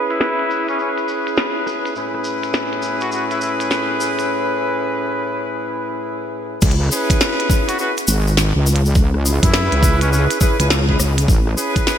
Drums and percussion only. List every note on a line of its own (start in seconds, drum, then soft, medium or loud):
0.10 closed hi-hat medium
0.10 shaker soft
0.21 snare loud
0.21 shaker medium
0.39 closed hi-hat soft
0.50 shaker medium
0.68 closed hi-hat medium
0.68 shaker soft
0.79 shaker soft
0.98 closed hi-hat soft
0.98 shaker soft
1.08 shaker medium
1.27 closed hi-hat medium
1.27 shaker soft
1.37 snare loud
1.37 shaker medium
1.67 cross-stick soft
1.67 shaker medium
1.85 closed hi-hat medium
1.85 shaker soft
1.95 shaker medium
2.14 cross-stick soft
2.24 shaker medium
2.43 closed hi-hat medium
2.43 shaker soft
2.53 snare loud
2.53 shaker soft
2.73 closed hi-hat soft
2.82 shaker medium
3.01 closed hi-hat medium
3.01 shaker soft
3.12 shaker soft
3.31 closed hi-hat soft
3.31 shaker soft
3.41 shaker medium
3.60 closed hi-hat medium
3.60 shaker soft
3.71 snare loud
3.71 shaker soft
4.00 shaker medium
4.19 closed hi-hat medium
4.19 shaker soft
6.62 kick loud
6.62 closed hi-hat soft
6.62 crash loud
6.62 shaker medium
6.71 closed hi-hat soft
6.81 cross-stick soft
6.83 cross-stick soft
6.86 cross-stick soft
6.89 cross-stick soft
6.89 shaker medium
7.10 kick loud
7.10 closed hi-hat medium
7.10 shaker soft
7.21 snare loud
7.21 shaker soft
7.40 closed hi-hat medium
7.50 kick loud
7.50 shaker medium
7.69 closed hi-hat medium
7.69 shaker soft
7.79 shaker medium
7.97 closed hi-hat medium
7.97 shaker soft
8.07 shaker medium
8.27 shaker soft
8.37 snare loud
8.37 shaker medium
8.66 shaker medium
8.76 closed hi-hat medium
8.85 shaker soft
8.95 kick loud
8.95 shaker medium
9.14 cross-stick soft
9.25 shaker medium
9.43 kick loud
9.43 closed hi-hat medium
9.43 shaker soft
9.54 snare loud
9.54 shaker medium
9.72 closed hi-hat medium
9.83 kick loud
9.83 shaker medium
10.01 closed hi-hat medium
10.01 shaker soft
10.13 shaker medium
10.30 closed hi-hat medium
10.30 shaker soft
10.41 kick loud
10.41 shaker loud
10.60 closed hi-hat medium
10.60 shaker soft
10.70 snare loud
10.70 shaker medium
10.89 kick medium
11.00 cross-stick medium
11.00 shaker loud
11.18 closed hi-hat medium
11.18 shaker soft
11.28 kick loud
11.28 shaker medium
11.47 cross-stick soft
11.58 shaker loud
11.76 kick loud
11.76 closed hi-hat medium
11.76 shaker soft
11.87 snare loud
11.87 shaker medium